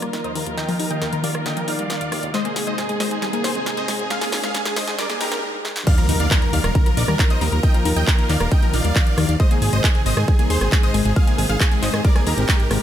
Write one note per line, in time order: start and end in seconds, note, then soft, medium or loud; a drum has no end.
0.00 0.10 D#2 medium
0.00 5.39 D#3 medium
0.00 2.30 F3 medium
0.00 0.09 G3 medium
0.00 2.30 A#3 medium
0.00 2.30 F4 medium
0.00 2.30 A#4 medium
0.00 0.11 A#4 medium
0.00 0.11 A#5 medium
0.00 cross-stick medium
0.00 closed hi-hat medium
0.00 riser medium
0.13 0.18 D#3 medium
0.13 0.22 A#4 medium
0.13 0.22 A#5 medium
0.13 snare medium
0.13 closed hi-hat medium
0.24 0.31 D#2 medium
0.24 0.33 C5 medium
0.24 0.33 D#5 medium
0.24 0.33 D#6 medium
0.24 closed hi-hat medium
0.35 0.43 D#2 medium
0.35 0.42 D#3 loud
0.35 0.44 A#4 medium
0.35 0.44 A#5 medium
0.35 open hi-hat loud
0.46 0.51 D#2 medium
0.46 0.54 D#2 medium
0.46 0.55 A#4 medium
0.46 0.55 A#5 medium
0.46 closed hi-hat medium
0.57 0.62 D#3 loud
0.57 0.66 D#5 medium
0.57 0.66 G5 loud
0.57 0.66 G6 medium
0.57 snare medium
0.57 closed hi-hat medium
0.68 0.79 F3 loud
0.68 0.77 A#4 medium
0.68 0.77 A#5 medium
0.68 open hi-hat medium
0.79 0.87 D#2 medium
0.79 0.90 D#4 loud
0.79 0.88 A#4 medium
0.79 0.88 A#5 medium
0.79 open hi-hat loud
0.90 0.98 D#2 medium
0.90 0.98 D#3 medium
0.90 0.99 D#5 medium
0.90 0.99 G5 medium
0.90 0.99 G6 medium
0.90 closed hi-hat medium
1.01 1.06 D#2 medium
1.01 1.10 A#4 medium
1.01 1.10 A#5 medium
1.01 snare medium
1.01 closed hi-hat medium
1.13 1.22 D#3 medium
1.13 1.21 A#4 medium
1.13 1.21 A#5 medium
1.13 closed hi-hat medium
1.24 1.31 D#2 medium
1.24 1.31 D#3 loud
1.24 1.32 D5 medium
1.24 1.32 F5 medium
1.24 1.32 F6 medium
1.24 open hi-hat loud
1.35 1.42 D#1 medium
1.35 1.45 D#3 medium
1.35 1.43 A#4 medium
1.35 1.43 A#5 medium
1.35 cross-stick medium
1.35 closed hi-hat medium
1.46 1.50 D3 loud
1.46 1.54 D#5 medium
1.46 1.54 G5 medium
1.46 1.54 G6 medium
1.46 snare medium
1.46 closed hi-hat medium
1.57 1.67 F3 loud
1.57 1.66 A#4 medium
1.57 1.66 A#5 medium
1.57 closed hi-hat medium
1.68 1.75 A#1 medium
1.68 1.78 D#4 loud
1.68 2.25 D5 medium
1.68 2.25 F5 loud
1.68 2.25 F6 medium
1.68 open hi-hat loud
1.79 1.86 D#2 medium
1.79 1.86 G3 medium
1.79 closed hi-hat medium
1.90 1.94 D#3 medium
1.90 snare medium
1.90 closed hi-hat medium
2.01 2.08 D#2 medium
2.01 closed hi-hat medium
2.12 2.20 D#2 medium
2.12 2.19 D#3 loud
2.12 cross-stick medium
2.12 open hi-hat loud
2.23 2.31 D#2 medium
2.23 2.27 D#2 medium
2.23 closed hi-hat medium
2.34 5.40 C3 medium
2.34 2.38 G#3 loud
2.34 5.40 G#3 medium
2.34 5.40 D#4 medium
2.34 5.40 G#4 medium
2.34 2.43 C5 medium
2.34 2.43 D#5 loud
2.34 2.43 D#6 loud
2.34 snare medium
2.34 closed hi-hat medium
2.45 2.55 A#3 loud
2.45 2.54 G#4 medium
2.45 2.54 G#5 medium
2.45 closed hi-hat medium
2.56 2.64 G#1 medium
2.56 2.67 G#4 loud
2.56 2.65 G#4 medium
2.56 2.65 G#5 medium
2.56 snare medium
2.56 open hi-hat loud
2.67 2.75 G#1 medium
2.67 2.74 G#3 medium
2.67 2.76 C5 medium
2.67 2.76 D#5 medium
2.67 2.76 D#6 medium
2.67 closed hi-hat medium
2.78 2.82 G#2 medium
2.78 2.87 G#4 medium
2.78 2.87 G#5 medium
2.78 snare medium
2.78 closed hi-hat medium
2.89 2.99 G#3 medium
2.89 2.98 G#4 medium
2.89 2.98 G#5 medium
2.89 closed hi-hat medium
3.00 3.08 G#1 loud
3.00 3.07 G#3 loud
3.00 3.09 C5 medium
3.00 3.09 D#5 medium
3.00 3.09 D#6 medium
3.00 snare medium
3.00 open hi-hat loud
3.11 3.19 G#2 medium
3.11 3.22 G#3 medium
3.11 3.20 G#4 medium
3.11 3.20 G#5 medium
3.11 closed hi-hat medium
3.22 3.26 G3 loud
3.22 3.31 G#4 medium
3.22 3.31 G#5 medium
3.22 snare medium
3.22 closed hi-hat medium
3.33 3.44 A#3 loud
3.33 3.42 G#4 medium
3.33 3.42 G#5 medium
3.33 closed hi-hat medium
3.44 3.52 D#2 medium
3.44 3.55 G#4 loud
3.44 3.53 G#4 medium
3.44 3.53 C5 medium
3.44 3.53 C6 loud
3.44 snare medium
3.44 open hi-hat loud
3.55 3.63 G#1 medium
3.55 3.62 C4 medium
3.55 3.64 G#4 medium
3.55 3.64 G#5 medium
3.55 closed hi-hat medium
3.66 3.71 G#3 medium
3.66 3.75 G#4 medium
3.66 3.75 G#5 medium
3.66 snare medium
3.66 closed hi-hat medium
3.77 3.84 G#2 medium
3.77 3.86 C5 medium
3.77 3.86 D#5 loud
3.77 3.86 D#6 medium
3.77 closed hi-hat medium
3.88 3.96 G#1 medium
3.88 3.95 G#3 loud
3.88 3.97 G#4 medium
3.88 3.97 G#5 medium
3.88 snare medium
3.88 open hi-hat loud
3.99 4.07 G#1 medium
3.99 4.04 G#2 medium
3.99 4.08 G#4 medium
3.99 4.08 G#5 medium
3.99 closed hi-hat medium
4.10 4.15 G#3 loud
4.10 4.19 G#4 medium
4.10 4.19 F5 medium
4.10 4.19 F6 loud
4.10 snare medium
4.10 closed hi-hat medium
4.21 4.32 A#3 loud
4.21 4.30 G#4 medium
4.21 4.30 G#5 medium
4.21 snare medium
4.21 open hi-hat medium
4.32 4.40 G#1 medium
4.32 4.43 G#4 loud
4.32 4.41 G#4 medium
4.32 4.41 G#5 medium
4.32 snare medium
4.32 open hi-hat loud
4.43 4.51 G#1 medium
4.43 4.51 G#3 medium
4.43 4.52 G#4 medium
4.43 4.52 F5 medium
4.43 4.52 F6 medium
4.43 snare medium
4.43 closed hi-hat medium
4.54 4.59 G#2 medium
4.54 4.63 G#4 medium
4.54 4.63 G#5 medium
4.54 snare medium
4.54 closed hi-hat medium
4.65 4.75 G#3 medium
4.65 4.74 G#4 medium
4.65 4.74 G#5 medium
4.65 snare medium
4.65 closed hi-hat medium
4.76 4.84 G#1 medium
4.76 4.84 G#3 loud
4.76 4.85 C5 medium
4.76 4.85 D#5 medium
4.76 4.85 D#6 medium
4.76 snare loud
4.76 open hi-hat loud
4.88 4.95 G#2 medium
4.88 4.98 G#3 medium
4.88 4.96 G#4 medium
4.88 4.96 G#5 medium
4.88 snare medium
4.88 closed hi-hat medium
4.99 5.03 G3 loud
4.99 5.07 A#4 medium
4.99 5.07 D5 medium
4.99 5.07 D6 medium
4.99 snare loud
4.99 closed hi-hat medium
5.10 5.20 A#3 loud
5.10 5.18 G#4 medium
5.10 5.18 G#5 medium
5.10 snare medium
5.10 closed hi-hat medium
5.21 5.28 D#2 medium
5.21 5.43 G4 medium
5.21 5.31 G#4 loud
5.21 5.43 A#4 loud
5.21 5.43 A#5 loud
5.21 snare loud
5.21 open hi-hat loud
5.32 5.39 G#1 medium
5.32 5.39 C4 medium
5.32 snare loud
5.43 5.47 G#3 medium
5.54 5.61 G#2 medium
5.65 5.72 G#3 loud
5.65 snare medium
5.76 5.80 G#2 medium
5.76 snare medium
5.87 5.91 D#3 loud
5.87 12.82 D#3 medium
5.87 9.36 F3 medium
5.87 9.36 A#3 medium
5.87 9.36 F4 medium
5.87 9.36 A#4 medium
5.87 5.96 D5 medium
5.87 5.96 F5 loud
5.87 5.96 F6 loud
5.87 kick loud
5.87 closed hi-hat medium
5.87 crash loud
5.87 impact medium
5.98 6.08 F3 loud
5.98 6.07 A#4 medium
5.98 6.07 A#5 medium
5.98 closed hi-hat medium
6.09 6.17 D#2 medium
6.09 6.19 D#4 loud
6.09 6.18 A#4 medium
6.09 6.18 A#5 medium
6.09 open hi-hat loud
6.20 6.28 D#2 medium
6.20 6.27 D#3 medium
6.20 6.29 D5 medium
6.20 6.29 F5 medium
6.20 6.29 F6 medium
6.20 closed hi-hat medium
6.31 6.35 D#2 medium
6.31 6.40 A#4 medium
6.31 6.40 A#5 medium
6.31 kick loud
6.31 clap loud
6.31 closed hi-hat medium
6.42 6.52 D#3 medium
6.42 6.51 A#4 medium
6.42 6.51 A#5 medium
6.42 closed hi-hat medium
6.53 6.61 D#2 loud
6.53 6.60 D#3 loud
6.53 6.62 D5 medium
6.53 6.62 F5 medium
6.53 6.62 F6 loud
6.53 open hi-hat loud
6.64 6.72 D#1 medium
6.64 6.75 D#3 medium
6.64 6.73 A#4 medium
6.64 6.73 A#5 medium
6.64 cross-stick medium
6.64 closed hi-hat medium
6.75 6.79 D3 loud
6.75 6.84 A#4 medium
6.75 6.84 A#5 medium
6.75 kick loud
6.75 closed hi-hat medium
6.86 6.97 F3 loud
6.86 6.95 A#4 medium
6.86 6.95 A#5 medium
6.86 closed hi-hat medium
6.97 7.05 A#1 medium
6.97 7.08 D#4 loud
6.97 7.06 A#4 medium
6.97 7.06 D5 medium
6.97 7.06 D6 loud
6.97 open hi-hat loud
7.08 7.16 D#2 medium
7.08 7.15 G3 medium
7.08 7.17 A#4 medium
7.08 7.17 A#5 medium
7.08 cross-stick medium
7.08 closed hi-hat medium
7.19 7.24 D#3 medium
7.19 7.28 A#4 medium
7.19 7.28 A#5 medium
7.19 kick loud
7.19 clap loud
7.19 closed hi-hat medium
7.30 7.37 D#2 medium
7.30 7.39 C5 medium
7.30 7.39 D#5 medium
7.30 7.39 D#6 medium
7.30 closed hi-hat medium
7.41 7.49 D#2 loud
7.41 7.48 D#3 loud
7.41 7.50 A#4 medium
7.41 7.50 A#5 medium
7.41 open hi-hat medium
7.52 7.60 D#2 medium
7.52 7.57 D#2 medium
7.52 7.61 A#4 medium
7.52 7.61 A#5 medium
7.52 closed hi-hat medium
7.63 7.68 D#3 loud
7.63 7.72 D#5 medium
7.63 7.72 G5 loud
7.63 7.72 G6 loud
7.63 kick loud
7.63 closed hi-hat medium
7.74 7.85 F3 loud
7.74 7.83 A#4 medium
7.74 7.83 A#5 medium
7.74 closed hi-hat medium
7.85 7.93 D#2 medium
7.85 7.96 D#4 loud
7.85 7.94 A#4 medium
7.85 7.94 A#5 medium
7.85 open hi-hat loud
7.96 8.04 D#2 medium
7.96 8.03 D#3 medium
7.96 8.05 D#5 medium
7.96 8.05 G5 medium
7.96 8.05 G6 loud
7.96 closed hi-hat medium
8.07 8.16 A#4 medium
8.07 8.16 A#5 medium
8.07 kick loud
8.07 clap loud
8.07 closed hi-hat medium
8.18 8.28 D#3 medium
8.18 8.27 A#4 medium
8.18 8.27 A#5 medium
8.18 closed hi-hat medium
8.29 8.37 D#2 medium
8.29 8.37 D#3 loud
8.29 8.38 D5 medium
8.29 8.38 F5 medium
8.29 8.38 F6 medium
8.29 clap soft
8.29 open hi-hat loud
8.40 8.48 D#1 medium
8.40 8.51 D#3 medium
8.40 8.49 A#4 medium
8.40 8.49 A#5 medium
8.40 cross-stick medium
8.40 closed hi-hat medium
8.51 8.56 D3 loud
8.51 8.60 D#5 medium
8.51 8.60 G5 medium
8.51 8.60 G6 medium
8.51 kick loud
8.51 closed hi-hat medium
8.62 8.73 F3 loud
8.62 8.71 A#4 medium
8.62 8.71 A#5 medium
8.62 closed hi-hat medium
8.73 8.81 A#1 medium
8.73 8.84 D#4 loud
8.73 9.31 D5 medium
8.73 9.31 F5 loud
8.73 9.31 F6 loud
8.73 open hi-hat loud
8.85 8.92 D#2 medium
8.85 8.92 G3 medium
8.85 closed hi-hat medium
8.96 9.00 D#3 medium
8.96 kick loud
8.96 clap loud
8.96 closed hi-hat medium
9.07 9.14 D#2 medium
9.07 closed hi-hat medium
9.18 9.25 D#2 medium
9.18 9.25 D#3 loud
9.18 cross-stick medium
9.18 open hi-hat medium
9.29 9.33 D#2 medium
9.29 9.36 D#2 medium
9.29 closed hi-hat medium
9.40 12.82 C3 medium
9.40 12.82 G#3 medium
9.40 9.44 G#3 loud
9.40 12.82 D#4 medium
9.40 12.82 C5 medium
9.40 9.49 C5 medium
9.40 9.49 D#5 loud
9.40 9.49 D#6 loud
9.40 kick loud
9.40 closed hi-hat medium
9.51 9.61 A#3 loud
9.51 9.60 G#4 medium
9.51 9.60 G#5 medium
9.51 closed hi-hat medium
9.62 9.70 G#1 loud
9.62 9.71 G#4 medium
9.62 9.72 G#4 loud
9.62 9.71 G#5 medium
9.62 open hi-hat loud
9.73 9.81 G#1 medium
9.73 9.80 G#3 medium
9.73 9.82 C5 medium
9.73 9.82 D#5 loud
9.73 9.82 D#6 loud
9.73 closed hi-hat medium
9.84 9.88 G#2 medium
9.84 9.93 G#4 medium
9.84 9.93 G#5 medium
9.84 kick loud
9.84 clap loud
9.84 closed hi-hat medium
9.95 10.05 G#3 medium
9.95 10.04 G#4 medium
9.95 10.04 G#5 medium
9.95 closed hi-hat medium
10.06 10.14 G#1 medium
10.06 10.13 G#3 loud
10.06 10.15 C5 medium
10.06 10.15 D#5 loud
10.06 10.15 D#6 loud
10.06 open hi-hat loud
10.17 10.25 G#2 medium
10.17 10.28 G#3 medium
10.17 10.26 G#4 medium
10.17 10.26 G#5 medium
10.17 cross-stick medium
10.17 closed hi-hat medium
10.28 10.32 G3 loud
10.28 10.37 G#4 medium
10.28 10.37 G#5 medium
10.28 kick loud
10.28 closed hi-hat medium
10.39 10.50 A#3 loud
10.39 10.48 G#4 medium
10.39 10.48 G#5 medium
10.39 closed hi-hat medium
10.50 10.58 D#2 medium
10.50 10.61 G#4 loud
10.50 10.59 G#4 medium
10.50 10.59 C5 medium
10.50 10.59 C6 loud
10.50 open hi-hat loud
10.61 10.69 G#1 medium
10.61 10.68 C4 medium
10.61 10.70 G#4 medium
10.61 10.70 G#5 medium
10.61 cross-stick medium
10.61 closed hi-hat medium
10.72 10.76 G#3 medium
10.72 10.81 G#4 medium
10.72 10.81 G#5 medium
10.72 kick loud
10.72 clap loud
10.72 closed hi-hat medium
10.83 10.90 G#2 medium
10.83 10.92 C5 medium
10.83 10.92 D#5 medium
10.83 10.92 D#6 medium
10.83 closed hi-hat medium
10.94 11.02 G#1 medium
10.94 11.01 G#3 loud
10.94 11.03 G#4 medium
10.94 11.03 G#5 medium
10.94 open hi-hat loud
11.05 11.13 G#1 medium
11.05 11.10 G#2 medium
11.05 11.14 G#4 medium
11.05 11.14 G#5 medium
11.05 closed hi-hat medium
11.16 11.21 G#3 loud
11.16 11.25 G#4 medium
11.16 11.25 F5 loud
11.16 11.25 F6 loud
11.16 kick loud
11.16 closed hi-hat medium
11.27 11.38 A#3 loud
11.27 11.36 G#4 medium
11.27 11.36 G#5 medium
11.27 closed hi-hat medium
11.38 11.46 G#1 medium
11.38 11.49 G#4 loud
11.38 11.47 G#4 medium
11.38 11.47 G#5 medium
11.38 open hi-hat loud
11.49 11.57 G#1 medium
11.49 11.56 G#3 medium
11.49 11.58 G#4 medium
11.49 11.58 F5 medium
11.49 11.58 F6 loud
11.49 closed hi-hat medium
11.60 11.69 G#4 medium
11.60 11.69 G#5 medium
11.60 kick loud
11.60 clap loud
11.60 closed hi-hat medium
11.71 11.81 G#3 medium
11.71 11.80 G#4 medium
11.71 11.80 G#5 medium
11.71 closed hi-hat medium
11.82 11.90 G#1 loud
11.82 11.90 G#3 loud
11.82 11.91 C5 medium
11.82 11.91 D#5 medium
11.82 11.91 D#6 medium
11.82 clap soft
11.82 open hi-hat loud
11.94 12.01 G#2 medium
11.94 12.04 G#3 medium
11.94 12.02 G#4 medium
11.94 12.02 G#5 medium
11.94 cross-stick medium
11.94 closed hi-hat medium
12.05 12.09 G3 loud
12.05 12.13 A#4 medium
12.05 12.13 D5 medium
12.05 12.13 D6 medium
12.05 kick loud
12.05 closed hi-hat medium
12.16 12.26 A#3 loud
12.16 12.24 G#4 medium
12.16 12.24 G#5 medium
12.16 cross-stick medium
12.16 closed hi-hat medium
12.27 12.34 D#2 medium
12.27 12.82 G4 medium
12.27 12.37 G#4 loud
12.27 12.82 A#4 loud
12.27 12.82 A#5 medium
12.27 open hi-hat loud
12.38 12.45 G#1 medium
12.38 12.45 C4 medium
12.38 closed hi-hat medium
12.49 12.53 G#3 medium
12.49 kick loud
12.49 clap loud
12.49 closed hi-hat medium
12.60 12.67 G#2 medium
12.60 closed hi-hat medium
12.71 12.78 G#1 medium
12.71 12.78 G#3 loud
12.71 cross-stick medium
12.71 open hi-hat loud